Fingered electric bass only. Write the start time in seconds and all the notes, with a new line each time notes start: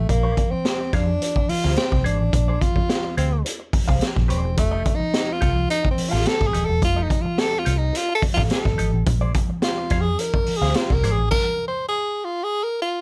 0.10 A#1
0.52 muted fingered electric bass stroke
0.93 F2
1.49 muted fingered electric bass stroke
1.65 D2
1.92 C2
2.05 G#1
2.21 A1
2.33 A#1
2.76 muted fingered electric bass stroke
3.17 D2
3.73 muted fingered electric bass stroke
3.89 C2
4.17 A#1
4.29 D#1
4.44 E1
4.58 F1
5.00 muted fingered electric bass stroke
5.42 C2
5.98 muted fingered electric bass stroke
6.13 A1
6.41 G#1
6.54 D#1
6.69 E1
6.82 F1
7.25 muted fingered electric bass stroke
7.67 C2
8.22 muted fingered electric bass stroke
8.38 A1
8.65 G#1
8.78 G#1
8.93 A1
9.07 A#1
9.49 muted fingered electric bass stroke
9.91 F2
10.47 muted fingered electric bass stroke
10.61 D2
10.90 C2
11.03 G#1
11.18 A1